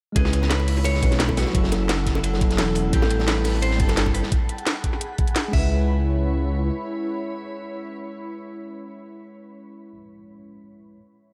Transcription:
0.12 detuned saw bass C#2, tine electric piano G#3 C#4, clean electric guitar G#4, ambient pad C#5 B5 E6, kick, closed hi-hat, ride
0.16 tine electric piano E4 B4, high bongo
0.25 snare
0.33 closed hi-hat, ride
0.42 snare, high bongo
0.50 clean electric guitar B4, snare, closed hi-hat, ride
0.60 high bongo
0.68 closed hi-hat, open hi-hat
0.77 snare
0.84 clean electric guitar C#5, closed hi-hat, ride, high bongo
0.94 snare
0.99 detuned saw bass B1, tine electric piano G#3 C#4, kick, closed hi-hat, ride
1.03 tine electric piano E4 B4, high bongo
1.11 snare, closed hi-hat
1.19 clean electric guitar B4, snare, closed hi-hat, ride
1.29 kick, snare, high bongo
1.37 clean electric guitar F#4, snare, open hi-hat, ride
1.47 snare, high bongo
1.51 detuned saw bass F#1, tine electric piano F#3 C#4, ambient pad A4 F#5, kick, ride
1.55 tine electric piano E4 A4, closed hi-hat
1.64 snare
1.72 snare, closed hi-hat, ride, high bongo
1.89 snare, closed hi-hat, ride, high bongo
2.06 kick, snare, closed hi-hat, ride
2.15 snare, high bongo
2.23 closed hi-hat, ride
2.34 snare, high bongo
2.38 tine electric piano F#3 C#4, kick, closed hi-hat, ride
2.42 tine electric piano E4 A4
2.51 snare, closed hi-hat
2.58 detuned saw bass E1, snare, closed hi-hat, ride, high bongo
2.68 ride
2.75 open hi-hat, ride, high bongo
2.89 detuned saw bass A1, tine electric piano G3 C4, ambient pad G5 A5, kick, closed hi-hat
2.94 tine electric piano E4 A4, clean electric guitar G4, ride
3.02 snare, high bongo
3.10 closed hi-hat, ride
3.19 snare, high bongo
3.27 clean electric guitar B4, snare, closed hi-hat, ride
3.44 snare, closed hi-hat, open hi-hat, high bongo
3.54 snare
3.62 clean electric guitar C5, closed hi-hat, ride, high bongo
3.71 snare
3.76 detuned saw bass G1, tine electric piano G3 C4, clean electric guitar A4, kick, closed hi-hat, ride
3.81 tine electric piano E4 A4
3.88 snare, closed hi-hat, high bongo
3.97 snare, closed hi-hat, ride
4.06 kick, snare, high bongo
4.14 clean electric guitar B4, open hi-hat, ride
4.23 snare
4.32 ambient pad G#4 F#5 B5, kick, closed hi-hat
4.49 closed hi-hat
4.58 closed hi-hat
4.67 snare, closed hi-hat
4.84 kick, closed hi-hat
4.93 snare
5.01 closed hi-hat
5.18 kick, closed hi-hat
5.28 closed hi-hat
5.36 snare, closed hi-hat
5.48 tine electric piano G#3 C#4
5.53 detuned saw bass C#2, ambient pad E4 C#5 B5, tine electric piano E4, clean electric guitar E5, kick, crash
5.58 tine electric piano B4

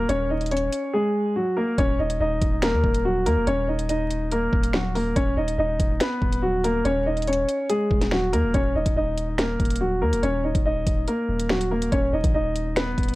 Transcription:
0.09 808-style bass D#1, grand piano C#4 C#5, closed hi-hat
0.30 grand piano D#4 D#5
0.41 closed hi-hat
0.46 closed hi-hat
0.51 grand piano C#4 C#5, closed hi-hat
0.57 closed hi-hat
0.72 closed hi-hat
0.94 grand piano G#3 G#4
1.36 grand piano F#3 F#4
1.57 grand piano A#3 A#4
1.78 808-style bass D#1, grand piano C#4 C#5, kick, closed hi-hat
1.99 808-style bass D#1, grand piano D#4 D#5
2.10 closed hi-hat
2.20 808-style bass D#1, grand piano D#4 D#5
2.42 808-style bass D#1, kick, closed hi-hat
2.62 grand piano A#3 A#4, finger snap, snare, closed hi-hat
2.73 808-style bass D#2
2.84 808-style bass D#1, kick
2.94 closed hi-hat
3.05 grand piano F#3 F#4
3.26 808-style bass D#2, grand piano A#3 A#4, closed hi-hat
3.37 808-style bass D#1
3.47 808-style bass D#1, grand piano C#4 C#5, closed hi-hat
3.68 grand piano D#4 D#5
3.79 closed hi-hat
3.89 grand piano D#4 D#5, closed hi-hat
4.11 closed hi-hat
4.32 grand piano A#3 A#4, closed hi-hat
4.53 808-style bass D#1, kick
4.63 closed hi-hat
4.73 grand piano F#3 F#4, finger snap, snare
4.95 grand piano A#3 A#4, open hi-hat
5.16 808-style bass D#1, grand piano C#4 C#5, kick, closed hi-hat
5.37 808-style bass D#1, grand piano D#4 D#5
5.48 closed hi-hat
5.58 808-style bass D#1, grand piano D#4 D#5
5.80 808-style bass D#1, kick, closed hi-hat
6.00 grand piano B3 B4, finger snap, snare, closed hi-hat
6.22 808-style bass D#1, kick
6.33 closed hi-hat
6.42 grand piano F#3 F#4
6.64 grand piano A#3 A#4, closed hi-hat
6.85 808-style bass D#1, grand piano C#4 C#5, closed hi-hat
7.06 grand piano D#4 D#5
7.17 closed hi-hat
7.22 closed hi-hat
7.27 grand piano C#4 C#5, closed hi-hat
7.33 closed hi-hat
7.49 closed hi-hat
7.70 grand piano G#3 G#4, closed hi-hat
7.91 808-style bass D#1, kick
8.01 snare, closed hi-hat
8.11 grand piano F#3 F#4, finger snap, snare
8.33 808-style bass D#2, grand piano A#3 A#4, closed hi-hat
8.44 808-style bass D#1
8.54 808-style bass D#1, grand piano C#4 C#5, kick, closed hi-hat
8.75 808-style bass D#1, grand piano D#4 D#5
8.86 808-style bass D#1, kick, closed hi-hat
8.96 808-style bass D#1, grand piano D#4 D#5
9.18 closed hi-hat
9.38 grand piano A#3 A#4, finger snap, snare, closed hi-hat
9.60 808-style bass D#1, kick, closed hi-hat
9.65 closed hi-hat
9.70 closed hi-hat
9.76 closed hi-hat
9.81 grand piano F#3 F#4
10.02 808-style bass D#2, grand piano A#3 A#4
10.13 808-style bass D#1, closed hi-hat
10.23 808-style bass D#1, grand piano C#4 C#5, closed hi-hat
10.44 grand piano D#4 D#5
10.55 808-style bass D#1, kick, closed hi-hat
10.65 grand piano D#4 D#5
10.87 808-style bass D#1, kick, closed hi-hat
11.08 grand piano A#3 A#4, closed hi-hat
11.29 808-style bass D#1
11.40 closed hi-hat
11.49 grand piano F#3 F#4, finger snap, snare
11.61 closed hi-hat
11.71 grand piano A#3 A#4
11.82 closed hi-hat
11.92 808-style bass D#1, grand piano C#4 C#5, kick, closed hi-hat
12.13 808-style bass D#1, grand piano D#4 D#5
12.24 808-style bass A#1, kick, closed hi-hat
12.34 808-style bass D#1, grand piano D#4 D#5
12.56 closed hi-hat
12.76 grand piano B3 B4, finger snap, snare, closed hi-hat
12.98 808-style bass D#1, kick, closed hi-hat
13.03 closed hi-hat
13.08 closed hi-hat

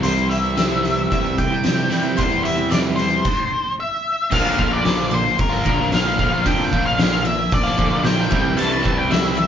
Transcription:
Already playing: overdriven electric guitar C3 G3 C4
0.03 picked electric bass C2, steel-string acoustic guitar C3 E3 G3 C4 E4, lead electric guitar C5, closed hi-hat
0.17 steel-string acoustic guitar G3 C4 E4
0.29 lead electric guitar E5, closed hi-hat
0.45 steel-string acoustic guitar G3 C4 E4
0.56 overdriven electric guitar C3 G3 C4, steel-string acoustic guitar C3 E3 G3 C4 E4, snare, closed hi-hat
0.84 steel-string acoustic guitar E3 G3 C4 E4, closed hi-hat
0.97 steel-string acoustic guitar G3 C4 E4
1.11 picked electric bass C2, lead electric guitar E5, kick, closed hi-hat
1.24 steel-string acoustic guitar G3 C4 E4
1.37 picked electric bass C3, steel-string acoustic guitar E3 G3 C4 E4, lead electric guitar G5, kick, closed hi-hat
1.50 steel-string acoustic guitar G3 C4 E4
1.63 steel-string acoustic guitar C3 E3 G3 C4 E4, snare, closed hi-hat
1.89 overdriven electric guitar C3 G3 C4, steel-string acoustic guitar E3 G3 C4 E4, closed hi-hat
2.03 steel-string acoustic guitar G3 C4 E4
2.17 picked electric bass E2, steel-string acoustic guitar C3 E3 G3 C4 E4, lead electric guitar C5, kick, closed hi-hat
2.30 steel-string acoustic guitar G3 C4 E4
2.43 lead electric guitar E5, closed hi-hat
2.57 steel-string acoustic guitar G3 C4 E4
2.70 overdriven electric guitar C3 G3 C4, steel-string acoustic guitar C3 E3 G3 C4 E4, lead electric guitar D5, snare, closed hi-hat
2.96 steel-string acoustic guitar E3 G3 C4 E4, lead electric guitar C5, closed hi-hat
3.10 steel-string acoustic guitar G3 C4 E4
3.25 kick, crash
3.80 lead electric guitar E5
4.31 picked electric bass A#1, overdriven electric guitar A#2 D3 F3 A#3 F4, steel-string acoustic guitar A#2 D3 A#3, lead electric guitar F5, kick, crash
4.58 picked electric bass A#1, steel-string acoustic guitar A#2 D3, overdriven electric guitar D3 F3 A#3 F4, kick
4.73 lead electric guitar D5
4.83 overdriven electric guitar A#2 D3 F3 A#3 F4, steel-string acoustic guitar A#2 D3, snare, open hi-hat
4.97 overdriven electric guitar F3 A#3 F4
5.11 steel-string acoustic guitar A#2 D3 A#3, lead electric guitar C5, muted overdriven electric guitar stroke
5.38 picked electric bass G1, steel-string acoustic guitar A#2 D3, lead electric guitar A#4, kick, open hi-hat
5.49 overdriven electric guitar F3 A#3 F4
5.64 picked electric bass A#1, steel-string acoustic guitar A#2 D3 A#3, overdriven electric guitar D3 F3 A#3 F4, kick
5.79 overdriven electric guitar F3 A#3 F4
5.90 overdriven electric guitar A#2 D3 F3 A#3 F4, steel-string acoustic guitar A#2 D3, lead electric guitar F5, snare, open hi-hat
6.05 overdriven electric guitar F3 A#3 F4
6.17 picked electric bass A#1, steel-string acoustic guitar A#2 D3, overdriven electric guitar D3 F3 A#3 F4, kick
6.33 overdriven electric guitar F3 A#3 F4
6.45 picked electric bass F2, overdriven electric guitar A#2 D3 F3 A#3 F4, steel-string acoustic guitar A#2 D3 A#3, lead electric guitar G5, kick, open hi-hat
6.72 picked electric bass A#1, steel-string acoustic guitar A#2 D3, overdriven electric guitar D3 F3 A#3 F4, kick
6.86 lead electric guitar F5
6.98 overdriven electric guitar A#2 D3 F3 A#3 F4, steel-string acoustic guitar A#2 D3, snare, open hi-hat
7.12 overdriven electric guitar F3 A#3 F4
7.25 steel-string acoustic guitar A#2 D3 A#3, lead electric guitar E5, muted overdriven electric guitar stroke
7.51 picked electric bass A#1, steel-string acoustic guitar A#2 D3, lead electric guitar D5, kick, open hi-hat
7.64 overdriven electric guitar F3 A#3 F4
7.77 picked electric bass A#1, steel-string acoustic guitar A#2 D3 A#3, overdriven electric guitar D3 F3 A#3 F4, kick
7.91 overdriven electric guitar F3 A#3 F4
8.03 overdriven electric guitar A#2 D3 F3 A#3 F4, steel-string acoustic guitar A#2 D3, lead electric guitar G5, snare, open hi-hat
8.17 overdriven electric guitar F3 A#3 F4
8.30 picked electric bass C2, overdriven electric guitar C3 G3 C4 E4, steel-string acoustic guitar C3 E3 G3, kick
8.43 overdriven electric guitar G3 C4 E4
8.57 picked electric bass C2, steel-string acoustic guitar C3 E3 G3, overdriven electric guitar C3 G3 C4 E4, lead electric guitar A5, crash
8.83 picked electric bass C2, overdriven electric guitar C3 G3 C4 E4, steel-string acoustic guitar C3 E3, kick
8.99 lead electric guitar G5
9.10 overdriven electric guitar C3 G3 C4 E4, steel-string acoustic guitar C3 E3, lead electric guitar E5, snare, open hi-hat
9.24 overdriven electric guitar G3 C4 E4
9.36 steel-string acoustic guitar C3 E3 G3, muted overdriven electric guitar stroke

